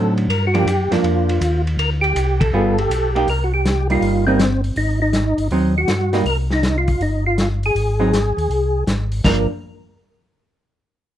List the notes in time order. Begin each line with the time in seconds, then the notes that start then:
Already playing: A2 D3 F#3 C4 D#4 A4
0.17 ride
0.28 G2 A#4, ride
0.47 F#4
0.54 F3 A#3 D4 G4, ride
0.65 F#2, hi-hat pedal, ride
0.91 F#2 F3 A#3 D4 F4, snare, ride
1.03 F2, ride
1.29 ride
1.41 D#2, hi-hat pedal, ride
1.67 ride
1.77 D2 A#4, ride
2.01 G4, ride
2.15 C2, hi-hat pedal, ride
2.40 A4, kick, ride
2.52 G1 G3 B3 F4 G#4
2.78 G4, ride
2.90 B1, hi-hat pedal, ride
3.15 A#3 D#4 G4, ride
3.27 C2 A#4, open hi-hat
3.44 F#4
3.54 G4
3.65 snare, closed hi-hat
3.90 G3 A#3 D#4 F4, open hi-hat
4.01 G1, open hi-hat
4.27 G3 A#3 C4 D#4
4.39 snare, closed hi-hat
4.64 open hi-hat
4.76 G#1 D#4, open hi-hat
5.02 D#4
5.13 snare, closed hi-hat
5.38 G1, open hi-hat
5.51 D#2 F#3 C4 D#4, open hi-hat
5.78 F#4
5.88 G2, snare, closed hi-hat
6.13 G3 A#3 D#4, snare, open hi-hat
6.25 C2 A#4, open hi-hat
6.50 D#4, snare
6.63 snare, closed hi-hat
6.78 F4
6.88 kick, open hi-hat
7.00 G1 D#4, open hi-hat
7.27 F4
7.38 snare, closed hi-hat
7.63 G#4, open hi-hat
7.75 G#1, open hi-hat
8.00 F#3 C4 D#4
8.13 snare, closed hi-hat
8.37 D#2, open hi-hat
8.50 C2, open hi-hat
8.87 G#1, snare, closed hi-hat
9.12 open hi-hat
9.24 G1 F3 A#3 D4 A#4, kick, snare, crash